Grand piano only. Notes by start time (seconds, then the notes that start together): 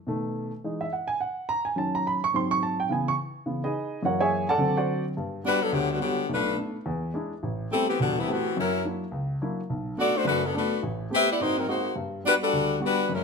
0.07 B2 D#3 A3
0.64 E3 G#3 D#4
0.81 E5
0.93 F#5
1.08 G#5
1.21 F#5
1.49 A#5
1.65 G#5
1.76 D#3 F#3 C#4 A5
1.95 A#5
2.07 B5
2.24 C#6
2.33 G#2 F#3 C4 C6
2.51 C#6
2.63 A5
2.80 G5
2.89 C#3 E3 B3 G#5
3.08 C#6
3.46 C#3 E3 B3
3.64 D#4 G#4 B4 D#5
4.03 F#2 E3 A#3 F#4 A#4 C#5 F#5
4.20 G#4 C#5 E5 G#5
4.49 A4 D5 F#5 A5
4.58 D3 F#3 C4
4.77 F#4 C5 D5 F#5
5.17 G2
5.44 G3 B3 F#4
5.72 D2
6.00 G3 B3 F#4
6.29 B1 B2
6.57 A3 B3 D4
6.86 E2
7.14 G#3 D4 E4
7.43 A1
7.71 A3 B3 C4 G4
8.00 E1
8.27 A3 B3 C4 G4
8.57 F#2
8.85 F#3 A#3 D4 E4
9.12 C#2
9.42 F#3 A#3 D4 E4
9.70 B1
9.97 A3 B3 D4
10.25 F#1 F#2
10.54 A3 B3 D4
10.83 A1
11.10 A3 B3 C4 G4
11.40 G#2 C4
11.67 G#3 A#3 C4 F#4
11.96 G2
12.24 G3 B3 F#4
12.53 D2
12.80 G3 B3 F#4
13.09 F#2